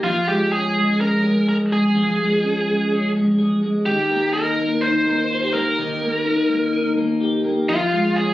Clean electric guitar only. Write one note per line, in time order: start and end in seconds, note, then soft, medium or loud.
0.03 1.94 F3 medium
0.27 0.74 G#3 soft
0.52 0.99 C#4 soft
0.75 1.22 G#3 soft
1.00 2.42 C#4 soft
1.24 1.70 G#3 medium
1.47 3.38 G#4 medium
1.71 2.18 G#3 soft
1.95 3.86 F3 medium
2.19 2.66 G#3 soft
2.43 2.90 C#4 medium
2.67 3.14 G#3 soft
2.91 3.91 C#4 medium
3.15 3.61 G#3 soft
3.39 3.91 G#4 medium
3.63 3.91 G#3 soft
3.87 5.77 D#3 medium
4.11 4.58 A#3 soft
4.36 4.82 D#4 soft
4.59 5.06 A#3 soft
4.83 6.24 D#4 soft
5.07 5.53 A#3 medium
5.31 5.43 F4 medium
5.43 7.20 G4 soft
5.54 6.01 A#3 soft
5.78 7.69 D#3 medium
6.02 6.48 A#3 soft
6.26 6.72 D#4 soft
6.50 6.96 A#3 soft
6.73 7.74 D#4 soft
6.97 7.43 A#3 soft
7.21 7.73 G4 medium
7.44 7.73 A#3 soft
7.69 8.34 F3 medium
7.93 8.34 G#3 soft
8.17 8.34 C#4 soft